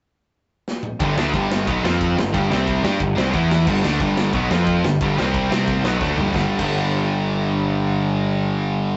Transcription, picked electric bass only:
0, 0, Header, 1, 2, 480
1, 0, Start_track
1, 0, Key_signature, 1, "major"
1, 0, Tempo, 334262
1, 1437, Time_signature, 4, 2, 24, 8
1, 12879, End_track
2, 0, Start_track
2, 0, Title_t, "Picked electric bass"
2, 0, Program_c, 0, 34
2, 1438, Note_on_c, 0, 31, 85
2, 1662, Note_off_c, 0, 31, 0
2, 1674, Note_on_c, 0, 38, 92
2, 1900, Note_off_c, 0, 38, 0
2, 1919, Note_on_c, 0, 31, 89
2, 2368, Note_off_c, 0, 31, 0
2, 2396, Note_on_c, 0, 35, 105
2, 2623, Note_off_c, 0, 35, 0
2, 2648, Note_on_c, 0, 41, 101
2, 3093, Note_off_c, 0, 41, 0
2, 3120, Note_on_c, 0, 31, 76
2, 3345, Note_off_c, 0, 31, 0
2, 3356, Note_on_c, 0, 31, 91
2, 3583, Note_off_c, 0, 31, 0
2, 3598, Note_on_c, 0, 36, 85
2, 4047, Note_off_c, 0, 36, 0
2, 4071, Note_on_c, 0, 43, 93
2, 4300, Note_off_c, 0, 43, 0
2, 4310, Note_on_c, 0, 31, 79
2, 4539, Note_off_c, 0, 31, 0
2, 4550, Note_on_c, 0, 36, 102
2, 4779, Note_off_c, 0, 36, 0
2, 4795, Note_on_c, 0, 40, 100
2, 5243, Note_off_c, 0, 40, 0
2, 5267, Note_on_c, 0, 31, 94
2, 5496, Note_off_c, 0, 31, 0
2, 5504, Note_on_c, 0, 38, 86
2, 5734, Note_off_c, 0, 38, 0
2, 5741, Note_on_c, 0, 31, 84
2, 6193, Note_off_c, 0, 31, 0
2, 6221, Note_on_c, 0, 35, 107
2, 6450, Note_off_c, 0, 35, 0
2, 6476, Note_on_c, 0, 41, 112
2, 6919, Note_off_c, 0, 41, 0
2, 6953, Note_on_c, 0, 31, 76
2, 7175, Note_off_c, 0, 31, 0
2, 7191, Note_on_c, 0, 31, 84
2, 7413, Note_off_c, 0, 31, 0
2, 7426, Note_on_c, 0, 36, 85
2, 7871, Note_off_c, 0, 36, 0
2, 7916, Note_on_c, 0, 36, 94
2, 8356, Note_off_c, 0, 36, 0
2, 8391, Note_on_c, 0, 35, 99
2, 8610, Note_off_c, 0, 35, 0
2, 8627, Note_on_c, 0, 38, 86
2, 8847, Note_off_c, 0, 38, 0
2, 8871, Note_on_c, 0, 31, 85
2, 9089, Note_off_c, 0, 31, 0
2, 9111, Note_on_c, 0, 31, 94
2, 9240, Note_off_c, 0, 31, 0
2, 9465, Note_on_c, 0, 31, 106
2, 12879, Note_off_c, 0, 31, 0
2, 12879, End_track
0, 0, End_of_file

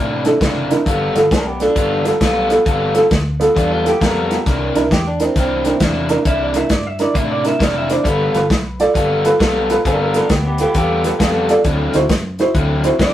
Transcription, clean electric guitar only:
0, 0, Header, 1, 2, 480
1, 0, Start_track
1, 0, Tempo, 449438
1, 916, Time_signature, 4, 2, 24, 8
1, 14030, End_track
2, 0, Start_track
2, 0, Title_t, "Clean electric guitar"
2, 0, Program_c, 0, 27
2, 1401, Note_on_c, 0, 62, 71
2, 1411, Note_on_c, 0, 70, 64
2, 1560, Note_off_c, 0, 62, 0
2, 1560, Note_on_c, 0, 59, 57
2, 1567, Note_off_c, 0, 70, 0
2, 1567, Note_on_c, 0, 67, 63
2, 1719, Note_off_c, 0, 67, 0
2, 1720, Note_off_c, 0, 59, 0
2, 1731, Note_on_c, 0, 62, 93
2, 2192, Note_off_c, 0, 62, 0
2, 3823, Note_on_c, 0, 62, 89
2, 3978, Note_off_c, 0, 62, 0
2, 3978, Note_on_c, 0, 65, 61
2, 4127, Note_off_c, 0, 65, 0
2, 4144, Note_on_c, 0, 67, 72
2, 4290, Note_off_c, 0, 67, 0
2, 4303, Note_on_c, 0, 70, 74
2, 5227, Note_off_c, 0, 70, 0
2, 5262, Note_on_c, 0, 67, 87
2, 5410, Note_off_c, 0, 67, 0
2, 5417, Note_on_c, 0, 62, 68
2, 5594, Note_off_c, 0, 62, 0
2, 5594, Note_on_c, 0, 60, 80
2, 5736, Note_off_c, 0, 60, 0
2, 5756, Note_on_c, 0, 60, 75
2, 6208, Note_off_c, 0, 60, 0
2, 6698, Note_on_c, 0, 76, 90
2, 6867, Note_off_c, 0, 76, 0
2, 6867, Note_on_c, 0, 74, 74
2, 7018, Note_off_c, 0, 74, 0
2, 7018, Note_on_c, 0, 76, 74
2, 7175, Note_off_c, 0, 76, 0
2, 7175, Note_on_c, 0, 74, 66
2, 7335, Note_off_c, 0, 74, 0
2, 7335, Note_on_c, 0, 76, 87
2, 7487, Note_off_c, 0, 76, 0
2, 7496, Note_on_c, 0, 74, 72
2, 7649, Note_off_c, 0, 74, 0
2, 7649, Note_on_c, 0, 76, 86
2, 7804, Note_off_c, 0, 76, 0
2, 7813, Note_on_c, 0, 74, 77
2, 7965, Note_off_c, 0, 74, 0
2, 7984, Note_on_c, 0, 76, 74
2, 8148, Note_off_c, 0, 76, 0
2, 8148, Note_on_c, 0, 74, 69
2, 8293, Note_off_c, 0, 74, 0
2, 8308, Note_on_c, 0, 76, 77
2, 8463, Note_off_c, 0, 76, 0
2, 8463, Note_on_c, 0, 74, 75
2, 8625, Note_off_c, 0, 74, 0
2, 8625, Note_on_c, 0, 71, 89
2, 9547, Note_off_c, 0, 71, 0
2, 10530, Note_on_c, 0, 62, 78
2, 10540, Note_on_c, 0, 70, 66
2, 10682, Note_off_c, 0, 62, 0
2, 10685, Note_off_c, 0, 70, 0
2, 10694, Note_on_c, 0, 62, 59
2, 10705, Note_on_c, 0, 70, 68
2, 10834, Note_off_c, 0, 62, 0
2, 10843, Note_off_c, 0, 70, 0
2, 10847, Note_on_c, 0, 62, 64
2, 10855, Note_on_c, 0, 70, 75
2, 11007, Note_off_c, 0, 62, 0
2, 11007, Note_on_c, 0, 59, 70
2, 11013, Note_off_c, 0, 70, 0
2, 11013, Note_on_c, 0, 67, 71
2, 11162, Note_off_c, 0, 67, 0
2, 11166, Note_off_c, 0, 59, 0
2, 11176, Note_on_c, 0, 59, 68
2, 11185, Note_on_c, 0, 67, 63
2, 11317, Note_off_c, 0, 59, 0
2, 11323, Note_off_c, 0, 67, 0
2, 11330, Note_on_c, 0, 59, 73
2, 11336, Note_on_c, 0, 67, 81
2, 11476, Note_off_c, 0, 59, 0
2, 11482, Note_off_c, 0, 67, 0
2, 11495, Note_on_c, 0, 67, 85
2, 12418, Note_off_c, 0, 67, 0
2, 13898, Note_on_c, 0, 74, 80
2, 14030, Note_off_c, 0, 74, 0
2, 14030, End_track
0, 0, End_of_file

